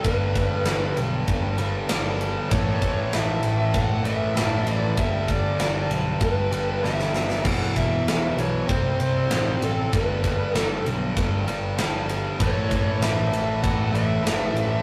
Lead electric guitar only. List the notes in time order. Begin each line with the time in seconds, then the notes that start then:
0.05 B4
2.51 C#5
3.14 E5
3.74 F#5
4.06 E5
4.73 D5
4.99 E5
5.30 D5
6.23 B4
6.83 E5
7.46 F#5
7.76 E5
8.39 C#5
8.71 C5
9.01 C5
9.64 A4
9.96 B4
10.58 A4
12.41 C#5
13.02 E5
13.62 F#5
13.95 E5